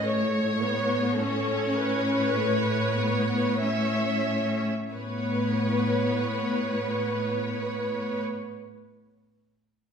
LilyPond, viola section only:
\new Staff \with { instrumentName = "Viola section" } { \time 4/4 \key a \major \tempo 4 = 47 << { cis''4 a'8 b'4. cis''4 | b'1 | } \\ { a8 b8 cis'4 a8 b8 cis'4 | b1 | } >> }